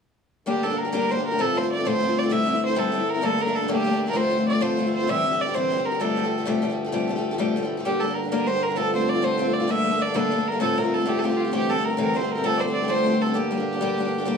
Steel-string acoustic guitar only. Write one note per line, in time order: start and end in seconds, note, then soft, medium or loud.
0.46 0.62 G3 medium
0.46 0.63 A#3 medium
0.46 0.63 D4 medium
0.46 0.64 G4 medium
0.63 0.70 G3 soft
0.63 0.71 A#3 medium
0.63 0.70 D4 medium
0.63 0.69 G4 medium
0.70 0.86 A#3 soft
0.70 0.85 D4 soft
0.70 0.84 G4 soft
0.85 0.92 A#3 soft
0.85 0.92 D4 soft
0.85 0.92 G4 soft
0.92 1.08 G3 medium
0.92 1.09 A#3 medium
0.92 1.10 D4 medium
0.92 1.10 G4 medium
1.09 1.17 G3 soft
1.09 1.17 A#3 soft
1.09 1.18 D4 medium
1.09 1.15 G4 medium
1.17 1.33 A#3 soft
1.17 1.31 D4 soft
1.17 1.30 G4 soft
1.31 1.39 A#3 soft
1.31 1.39 D4 soft
1.31 1.39 G4 soft
1.38 1.55 A2 medium
1.38 1.54 F3 medium
1.38 1.56 A3 medium
1.38 1.55 C4 medium
1.38 1.56 F4 medium
1.55 1.63 F3 soft
1.55 1.63 A3 soft
1.55 1.63 C4 soft
1.55 1.62 F4 medium
1.63 1.77 A3 soft
1.63 1.79 C4 soft
1.63 1.76 F4 soft
1.77 1.85 A3 soft
1.77 1.85 C4 soft
1.77 1.85 F4 soft
1.85 2.02 A2 medium
1.85 1.99 F3 medium
1.85 2.02 A3 medium
1.85 2.01 C4 medium
1.85 2.03 F4 medium
2.00 2.08 F3 medium
2.00 2.08 A3 medium
2.00 2.09 C4 soft
2.00 2.07 F4 soft
2.08 2.23 A3 soft
2.08 2.24 C4 soft
2.08 2.22 F4 medium
2.23 2.30 A3 medium
2.23 2.30 C4 soft
2.23 2.31 F4 medium
2.30 2.47 C3 medium
2.30 2.44 G3 medium
2.30 2.47 A3 medium
2.30 2.45 C4 medium
2.30 2.47 E4 medium
2.46 2.54 G3 soft
2.46 2.53 A3 medium
2.46 2.55 C4 medium
2.46 2.52 E4 medium
2.53 2.69 A3 soft
2.53 2.70 C4 soft
2.53 2.67 E4 soft
2.68 2.76 A3 soft
2.68 2.75 C4 soft
2.68 2.76 E4 soft
2.75 2.93 C3 medium
2.75 2.91 G3 medium
2.75 2.93 A3 medium
2.75 2.92 C4 medium
2.75 2.94 E4 medium
2.92 3.00 G3 medium
2.92 3.00 A3 medium
2.92 3.01 C4 medium
2.92 2.99 E4 medium
3.00 3.14 A3 soft
3.00 3.16 C4 soft
3.00 3.13 E4 soft
3.14 3.22 A3 soft
3.14 3.23 C4 soft
3.14 3.23 E4 soft
3.21 3.39 G2 medium
3.21 3.39 D3 medium
3.21 3.37 G3 medium
3.21 3.39 A3 medium
3.21 3.38 A#3 medium
3.21 3.40 D4 medium
3.38 3.47 G3 soft
3.38 3.46 A3 medium
3.38 3.47 A#3 medium
3.38 3.45 D4 medium
3.46 3.63 G3 soft
3.46 3.61 A3 soft
3.46 3.62 A#3 soft
3.46 3.60 D4 soft
3.61 3.67 G3 soft
3.61 3.68 A3 soft
3.61 3.68 A#3 soft
3.61 3.68 D4 soft
3.68 3.85 G2 medium
3.68 3.85 D3 medium
3.68 3.83 G3 medium
3.68 3.85 A3 medium
3.68 3.84 A#3 medium
3.68 3.85 D4 medium
3.84 3.93 G3 soft
3.84 3.91 A3 medium
3.84 3.92 A#3 medium
3.84 3.90 D4 medium
3.91 4.08 G3 soft
3.91 4.06 A3 soft
3.91 4.07 A#3 soft
3.91 4.05 D4 soft
4.06 4.13 G3 soft
4.06 4.13 A3 medium
4.06 4.14 A#3 soft
4.06 4.15 D4 medium
4.13 4.29 F3 medium
4.13 4.31 A3 medium
4.13 4.30 C4 medium
4.13 4.32 F4 medium
4.30 4.39 F3 soft
4.30 4.38 A3 medium
4.30 4.39 C4 medium
4.30 4.36 F4 medium
4.38 4.53 A3 soft
4.38 4.54 C4 soft
4.38 4.51 F4 soft
4.52 4.61 A3 soft
4.52 4.60 C4 soft
4.52 4.61 F4 soft
4.61 4.76 F3 medium
4.61 4.78 A3 medium
4.61 4.77 C4 medium
4.61 4.79 F4 medium
4.77 4.85 F3 medium
4.77 4.86 A3 medium
4.77 4.86 C4 medium
4.77 4.84 F4 soft
4.86 5.01 A3 soft
4.86 5.02 C4 soft
4.86 4.99 F4 soft
5.01 5.09 A3 soft
5.01 5.08 C4 soft
5.01 5.08 F4 soft
5.07 5.24 C3 medium
5.07 5.23 E3 medium
5.07 5.24 G3 medium
5.07 5.25 C4 medium
5.07 5.26 G4 medium
5.24 5.32 E3 soft
5.24 5.33 G3 medium
5.24 5.32 C4 soft
5.24 5.30 G4 medium
5.31 5.48 G3 soft
5.31 5.47 C4 soft
5.31 5.45 G4 medium
5.46 5.54 G3 soft
5.46 5.55 C4 soft
5.46 5.54 G4 soft
5.54 5.71 C3 medium
5.54 5.69 E3 medium
5.54 5.70 G3 medium
5.54 5.71 C4 medium
5.54 5.72 G4 medium
5.71 5.78 E3 medium
5.71 5.79 G3 medium
5.71 5.77 C4 medium
5.71 5.75 G4 medium
5.76 5.93 G3 soft
5.76 5.92 C4 soft
5.76 5.90 G4 soft
5.92 6.00 G3 soft
5.92 6.01 C4 soft
5.92 6.00 G4 medium
6.00 6.17 F2 medium
6.00 6.17 C3 medium
6.00 6.15 F3 medium
6.00 6.16 G3 medium
6.00 6.17 A3 medium
6.00 6.18 G4 medium
6.16 6.24 F3 soft
6.16 6.24 G3 soft
6.16 6.23 A3 soft
6.16 6.22 G4 medium
6.23 6.40 F3 soft
6.23 6.38 G3 soft
6.23 6.37 A3 soft
6.23 6.37 G4 soft
6.38 6.46 F3 soft
6.38 6.46 G3 soft
6.38 6.46 A3 soft
6.38 6.46 G4 soft
6.46 6.63 F2 medium
6.46 6.63 C3 medium
6.46 6.61 F3 medium
6.46 6.61 G3 medium
6.46 6.63 A3 medium
6.46 6.63 G4 medium
6.62 6.70 F3 medium
6.62 6.70 G3 medium
6.62 6.70 A3 medium
6.62 6.68 G4 medium
6.70 6.86 F3 soft
6.70 6.86 G3 soft
6.70 6.85 A3 soft
6.70 6.83 G4 medium
6.85 6.92 F3 soft
6.85 6.92 G3 soft
6.85 6.93 A3 soft
6.85 6.92 G4 soft
6.92 7.09 F2 medium
6.92 7.09 C3 medium
6.92 7.06 F3 medium
6.92 7.08 G3 medium
6.92 7.09 A3 medium
6.92 7.09 G4 medium
7.08 7.16 F3 soft
7.08 7.17 G3 soft
7.08 7.16 A3 medium
7.08 7.15 G4 medium
7.16 7.32 F3 soft
7.16 7.32 G3 soft
7.16 7.31 A3 soft
7.16 7.30 G4 soft
7.31 7.38 F3 soft
7.31 7.38 G3 soft
7.31 7.38 A3 soft
7.31 7.39 G4 soft
7.38 7.55 F2 medium
7.38 7.55 C3 medium
7.38 7.55 F3 medium
7.38 7.56 G3 medium
7.38 7.56 A3 medium
7.38 7.56 G4 medium
7.56 7.63 F3 medium
7.56 7.63 G3 medium
7.56 7.63 A3 medium
7.56 7.61 G4 medium
7.63 7.79 F3 soft
7.63 7.78 G3 soft
7.63 7.78 A3 soft
7.63 7.76 G4 soft
7.77 7.85 F3 soft
7.77 7.84 G3 soft
7.77 7.86 A3 soft
7.77 7.85 G4 medium
7.85 8.00 G3 medium
7.85 8.01 A#3 medium
7.85 8.02 D4 medium
7.85 8.02 G4 medium
8.01 8.09 G3 soft
8.01 8.09 A#3 medium
8.01 8.08 D4 soft
8.01 8.06 G4 medium
8.08 8.24 A#3 soft
8.08 8.24 D4 soft
8.08 8.22 G4 soft
8.23 8.31 A#3 soft
8.23 8.31 D4 soft
8.23 8.31 G4 soft
8.32 8.45 G3 medium
8.32 8.46 A#3 medium
8.32 8.47 D4 medium
8.32 8.48 G4 medium
8.47 8.54 G3 soft
8.47 8.55 A#3 soft
8.47 8.55 D4 medium
8.47 8.53 G4 medium
8.54 8.71 A#3 soft
8.54 8.69 D4 soft
8.54 8.68 G4 soft
8.69 8.76 A#3 soft
8.69 8.77 D4 soft
8.69 8.76 G4 soft
8.76 8.91 F3 medium
8.76 8.94 A3 medium
8.76 8.93 C4 medium
8.76 8.94 F4 medium
8.93 9.00 F3 soft
8.93 9.00 A3 soft
8.93 9.01 C4 soft
8.93 8.99 F4 medium
9.00 9.14 A3 soft
9.00 9.15 C4 soft
9.00 9.13 F4 soft
9.14 9.22 A3 soft
9.14 9.21 C4 soft
9.14 9.22 F4 soft
9.22 9.36 F3 medium
9.22 9.38 A3 medium
9.22 9.38 C4 medium
9.22 9.39 F4 medium
9.38 9.46 F3 soft
9.38 9.46 A3 soft
9.38 9.47 C4 medium
9.38 9.44 F4 medium
9.45 9.61 A3 soft
9.45 9.62 C4 soft
9.45 9.59 F4 soft
9.60 9.68 A3 soft
9.60 9.69 C4 soft
9.60 9.68 F4 medium
9.68 9.85 G2 medium
9.68 9.85 D3 medium
9.68 9.83 G3 medium
9.68 9.85 A3 medium
9.68 9.84 A#3 medium
9.68 9.85 D4 medium
9.84 9.92 G3 soft
9.84 9.92 A3 medium
9.84 9.93 A#3 medium
9.84 9.90 D4 medium
9.92 10.08 G3 soft
9.92 10.06 A3 soft
9.92 10.08 A#3 soft
9.92 10.05 D4 medium
10.06 10.13 G3 soft
10.06 10.15 A3 soft
10.06 10.14 A#3 soft
10.06 10.14 D4 soft
10.14 10.31 G2 medium
10.14 10.31 D3 medium
10.14 10.29 G3 medium
10.14 10.31 A3 medium
10.14 10.30 A#3 medium
10.14 10.32 D4 medium
10.30 10.38 G3 soft
10.30 10.38 A3 medium
10.30 10.39 A#3 medium
10.30 10.37 D4 medium
10.38 10.54 G3 soft
10.38 10.52 A3 soft
10.38 10.53 A#3 soft
10.38 10.51 D4 soft
10.52 10.59 G3 soft
10.52 10.60 A3 soft
10.52 10.60 A#3 soft
10.52 10.60 D4 soft
10.60 10.77 A2 medium
10.60 10.75 D3 medium
10.60 10.77 A3 medium
10.60 10.76 C4 medium
10.60 10.77 F4 medium
10.76 10.84 D3 soft
10.76 10.84 A3 medium
10.76 10.85 C4 medium
10.76 10.83 F4 medium
10.84 10.99 A3 soft
10.84 11.00 C4 soft
10.84 10.97 F4 soft
10.98 11.06 A3 soft
10.98 11.05 C4 soft
10.98 11.06 F4 soft
11.05 11.22 A2 medium
11.05 11.21 D3 medium
11.05 11.23 A3 medium
11.05 11.22 C4 medium
11.05 11.23 F4 medium
11.22 11.30 D3 soft
11.22 11.30 A3 medium
11.22 11.30 C4 medium
11.22 11.28 F4 medium
11.29 11.45 A3 soft
11.29 11.46 C4 soft
11.29 11.43 F4 medium
11.44 11.52 A3 soft
11.44 11.52 C4 soft
11.44 11.52 F4 medium
11.52 11.68 C3 medium
11.52 11.67 E3 medium
11.52 11.69 A3 medium
11.52 11.68 C4 medium
11.52 11.69 G4 medium
11.69 11.76 E3 soft
11.69 11.76 A3 medium
11.69 11.76 C4 medium
11.69 11.75 G4 medium
11.76 11.90 A3 soft
11.76 11.92 C4 soft
11.76 11.89 G4 soft
11.90 11.98 A3 soft
11.90 11.97 C4 soft
11.90 11.98 G4 soft
11.97 12.14 C3 medium
11.97 12.12 E3 medium
11.97 12.14 A3 medium
11.97 12.13 C4 medium
11.97 12.15 G4 medium
12.14 12.21 E3 medium
12.14 12.22 A3 medium
12.14 12.22 C4 medium
12.14 12.20 G4 medium
12.21 12.36 A3 soft
12.21 12.37 C4 soft
12.21 12.34 G4 soft
12.35 12.43 A3 soft
12.35 12.43 C4 soft
12.35 12.43 G4 soft
12.44 12.58 F3 medium
12.44 12.61 A3 medium
12.44 12.60 C4 medium
12.44 12.61 G4 medium
12.59 12.67 F3 soft
12.59 12.67 A3 soft
12.59 12.68 C4 soft
12.59 12.66 G4 medium
12.68 12.82 A3 soft
12.68 12.83 C4 soft
12.68 12.80 G4 soft
12.82 12.88 A3 soft
12.82 12.87 C4 soft
12.82 12.89 G4 soft
12.88 13.03 F3 medium
12.88 13.05 A3 medium
12.88 13.04 C4 medium
12.88 13.05 G4 medium
13.04 13.12 F3 medium
13.04 13.12 A3 medium
13.04 13.13 C4 medium
13.04 13.10 G4 medium
13.11 13.26 A3 soft
13.11 13.27 C4 soft
13.11 13.25 G4 soft
13.26 13.35 A3 soft
13.26 13.35 C4 soft
13.26 13.34 G4 medium
13.34 13.49 G3 medium
13.34 13.51 A#3 medium
13.34 13.51 D4 medium
13.34 13.52 G4 medium
13.51 13.58 G3 soft
13.51 13.59 A#3 medium
13.51 13.58 D4 soft
13.51 13.56 G4 soft
13.58 13.74 A#3 soft
13.58 13.73 D4 soft
13.58 13.72 G4 soft
13.73 13.81 A#3 soft
13.73 13.81 D4 soft
13.73 13.80 G4 soft
13.81 13.97 G3 medium
13.81 13.98 A#3 medium
13.81 13.98 D4 medium
13.81 13.98 G4 medium
13.98 14.05 G3 soft
13.98 14.05 A#3 soft
13.98 14.05 D4 medium
13.98 14.04 G4 medium
14.05 14.20 A#3 soft
14.05 14.18 D4 soft
14.05 14.17 G4 soft
14.18 14.25 A#3 soft
14.18 14.26 D4 medium
14.18 14.26 G4 soft
14.25 14.37 G3 medium
14.25 14.37 A#3 medium
14.25 14.37 D4 medium
14.25 14.37 G4 medium